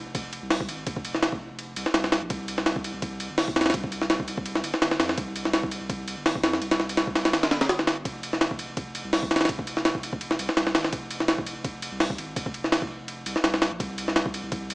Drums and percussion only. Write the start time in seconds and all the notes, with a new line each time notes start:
0.15 kick, ride
0.33 ride
0.51 snare, open hi-hat
0.60 kick
0.69 ride
0.87 kick, ride
0.96 kick
1.05 ride
1.14 snare
1.23 snare, ride
1.32 kick
1.59 ride
1.76 ride
1.86 snare
1.94 snare, ride
2.04 snare
2.12 snare, ride
2.30 kick, ride
2.48 ride
2.58 snare
2.66 snare, ride
2.76 kick
2.84 ride
3.02 kick, ride
3.20 ride
3.38 snare, open hi-hat
3.48 kick
3.56 snare, ride
3.61 snare, ride
3.66 snare, ride
3.70 snare, ride
3.74 kick, ride
3.84 kick
3.92 ride
4.02 snare
4.10 snare, ride
4.20 kick
4.28 ride
4.38 kick
4.46 ride
4.55 snare
4.64 ride
4.74 snare
4.82 snare, ride
4.91 snare
5.00 snare, ride
5.09 snare
5.18 kick, ride
5.36 ride
5.45 snare
5.53 snare, ride
5.63 kick
5.71 ride
5.90 kick, ride
6.08 ride
6.26 snare, open hi-hat
6.35 kick
6.43 snare, ride
6.53 snare
6.62 ride
6.71 snare, ride
6.80 snare
6.89 ride
6.97 snare, ride
7.07 kick
7.15 snare, ride
7.25 snare, ride
7.33 snare, ride
7.43 snare, ride
7.51 snare, ride
7.61 snare, ride
7.69 snare, ride
7.79 snare
7.87 snare, ride
8.05 kick, ride
8.23 ride
8.33 snare
8.41 snare, ride
8.51 kick
8.59 ride
8.77 kick, ride
8.95 ride
9.13 snare, open hi-hat
9.23 kick
9.31 snare, ride
9.36 snare, ride
9.41 snare, ride
9.45 kick, snare, ride
9.49 ride
9.59 kick
9.67 ride
9.77 snare
9.85 snare, ride
9.95 kick
10.03 ride
10.13 kick
10.21 ride
10.31 snare
10.39 ride
10.49 snare
10.57 snare, ride
10.67 snare
10.75 snare, ride
10.84 snare
10.93 kick, ride
11.11 ride
11.20 snare
11.28 snare, ride
11.38 kick
11.46 ride
11.64 kick, ride
11.82 ride
12.00 snare, open hi-hat
12.10 kick
12.18 ride
12.36 kick, ride
12.46 kick
12.54 ride
12.64 snare
12.72 snare, ride
12.82 kick
13.08 ride
13.26 ride
13.36 snare
13.44 snare, ride
13.54 snare
13.62 snare, ride
13.80 kick, ride
13.98 ride
14.08 snare
14.16 snare, ride
14.26 kick
14.34 ride
14.52 kick, ride
14.70 ride